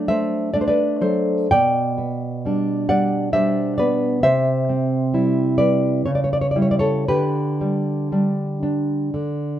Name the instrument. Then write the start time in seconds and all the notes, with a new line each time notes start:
nylon-string guitar
Already playing: F#3 D4
0.08 A3 C5 E5
0.54 A3 D4 D5
0.61 C5
0.68 B4 D5
1.01 F#3 A4 C5
1.51 B2 D5 G5
1.98 B3
2.45 G3 D4
2.89 G3 D5 F#5
3.33 G3 D4 C5 E5
3.78 B3 B4 D5
4.23 C3 C5 E5
4.69 C4
5.14 G3 E4
5.58 G3 B4 D5
6.06 C#3 C#5
6.15 D5
6.24 C#5
6.33 D5
6.41 C#5
6.51 D5
6.56 G3 E4
6.62 C#5
6.71 D5
6.79 A4 C#5
7.08 D3 G4 B4
7.61 G3
8.12 G3 D4
8.63 D4
9.14 D3